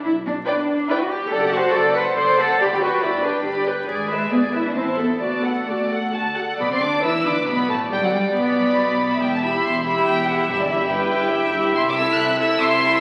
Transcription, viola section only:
X:1
M:3/4
L:1/16
Q:1/4=140
K:Glyd
V:1 name="Viola section"
z4 B4 B4 | [K:G] A2 c2 A2 c2 A2 c2 | G2 B2 G2 B2 G2 B2 | ^G2 B2 G2 B2 E2 A2 |
F2 A2 F2 A2 F2 A2 | B, C D2 E2 D2 B,2 A,2 | G, F, G,2 B,8 | z2 [EG]4 [EG]4 [EG]2 |
[EG]2 [EG]4 [EG]4 [EG]2 | z2 [EA]4 [EA]4 [EA]2 |]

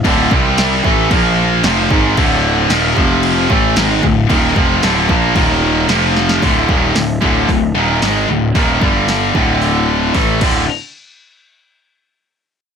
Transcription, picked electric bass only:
X:1
M:4/4
L:1/8
Q:1/4=113
K:Dm
V:1 name="Picked electric bass" clef=bass
D,,, C,,2 A,,, B,,,2 F,,, ^G,,, | D,,,2 _E,,, F,,,2 A,,, ^G,,, D,,, | _E,,, F,,, D,,, B,,, E,,,2 F,,,2 | D,,, _E,,, D,,, D,,, D,,, E,,, ^G,,, D,,, |
_E,,, G,,,2 D,,,3 A,,, D,,, | z8 |]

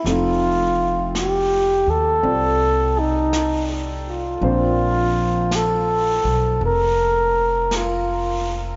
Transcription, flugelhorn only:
X:1
M:4/4
L:1/16
Q:"Swing" 1/4=55
K:Flyd
V:1 name="Flugelhorn"
F4 G2 A4 _E3 z F2- | F4 A4 _B4 F3 z |]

